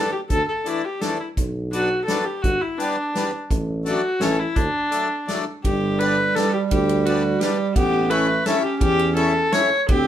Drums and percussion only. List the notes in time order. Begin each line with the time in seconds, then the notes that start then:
0.30 kick, closed hi-hat
0.66 closed hi-hat
1.01 snare, closed hi-hat
1.37 kick, closed hi-hat
1.73 closed hi-hat
2.08 snare, closed hi-hat
2.44 kick, closed hi-hat
2.80 closed hi-hat
3.15 snare, closed hi-hat
3.51 kick, closed hi-hat
3.86 closed hi-hat
4.21 snare, closed hi-hat
4.56 kick, closed hi-hat
4.92 closed hi-hat
5.28 snare, closed hi-hat
5.65 kick, ride
6.00 ride
6.36 snare, ride
6.71 kick, ride
6.89 ride
7.06 ride
7.41 snare, ride
7.76 kick, ride
8.11 ride
8.46 snare, ride
8.81 kick, ride
8.99 ride
9.16 ride
9.52 snare, ride
9.89 kick, ride